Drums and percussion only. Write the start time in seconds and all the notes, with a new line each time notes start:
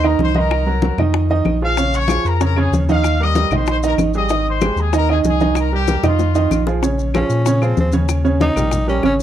0.04 high bongo, high conga, claves
0.19 high bongo, low bongo, high conga
0.35 high bongo, high conga
0.50 high bongo, high conga, claves
0.66 high conga
0.82 high bongo, high conga
0.98 high bongo, high conga, low conga, claves
1.14 high bongo, high conga
1.29 high bongo, high conga
1.45 high bongo, low bongo, high conga, claves
1.61 high bongo
1.77 high bongo, high conga, maracas
1.93 high conga, maracas
2.08 high bongo, high conga, claves, maracas
2.24 high bongo, high conga, maracas
2.41 high bongo, high conga, maracas
2.56 high bongo, high conga, claves
2.73 high bongo, low bongo, high conga, maracas
2.89 high bongo, high conga, maracas
3.04 high bongo, high conga, claves, maracas
3.20 high conga
3.35 high bongo, high conga, maracas
3.51 high bongo, high conga, low conga, claves, maracas
3.67 high bongo, high conga, maracas
3.83 high bongo, high conga, maracas
3.98 high bongo, low bongo, high conga, claves, maracas
4.14 high bongo, maracas
4.29 high bongo, high conga, maracas
4.46 high conga
4.61 high bongo, high conga, claves, maracas
4.77 high bongo, high conga, maracas
4.93 high bongo, high conga, maracas
5.09 high bongo, high conga, claves
5.24 high bongo, low bongo, high conga, maracas
5.40 high bongo, high conga, maracas
5.55 high bongo, high conga, claves, maracas
5.72 high conga
5.87 high bongo, high conga, maracas
6.03 high bongo, high conga, low conga, claves, maracas
6.19 high bongo, high conga, maracas
6.35 high conga, maracas
6.51 low bongo, high conga, claves, maracas
6.67 low bongo, maracas
6.83 high bongo, high conga, maracas
6.98 high bongo, high conga, maracas
7.14 high bongo, high conga, claves, maracas
7.30 high conga, maracas
7.46 high bongo, high conga, maracas
7.62 high bongo, high conga, claves, maracas
7.77 high bongo, low bongo, high conga, maracas
7.92 high bongo, high conga, maracas
8.09 high bongo, high conga, claves, maracas
8.25 high bongo, high conga, maracas
8.41 high bongo, high conga, maracas
8.56 high conga, low conga, claves, maracas
8.71 high bongo, high conga, low conga, maracas
8.87 high bongo, high conga, maracas
9.03 high bongo, low bongo, high conga, claves, maracas
9.19 high bongo